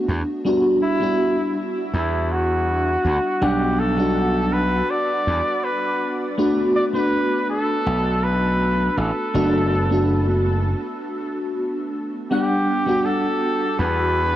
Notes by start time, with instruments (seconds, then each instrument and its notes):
Already playing: fm electric piano A3 B3 D4 F#4
0.08 slap bass E2
0.45 fm electric piano G3 B3 D4 F#4
0.83 flugelhorn E4
1.00 fm electric piano G3 B3 D4 F#4
1.94 slap bass E2, flugelhorn E4
2.32 flugelhorn F#4
3.05 slap bass D2
3.41 slap bass B1, fm electric piano G3 B3 D4 F#5, flugelhorn G4
3.79 flugelhorn A4
3.97 fm electric piano G3 B3 D4 F#4
4.53 flugelhorn B4
4.90 flugelhorn D5
5.27 slap bass E2
5.64 flugelhorn B4
6.38 fm electric piano A3 B3 D4 F#4
6.76 flugelhorn D5
6.93 fm electric piano A3 B3 D4 F#4, flugelhorn B4
7.50 flugelhorn A4
7.86 slap bass B1
8.24 flugelhorn B4
8.97 slap bass A1, flugelhorn A4
9.34 slap bass F#1, fm electric piano A3 B3 D4 F#4
9.89 fm electric piano A3 B3 D4 F#4
12.31 fm electric piano G3 B3 D4 F#5, flugelhorn G4
12.86 fm electric piano G3 B3 D4 F#4
13.05 flugelhorn A4
13.79 slap bass E2, flugelhorn B4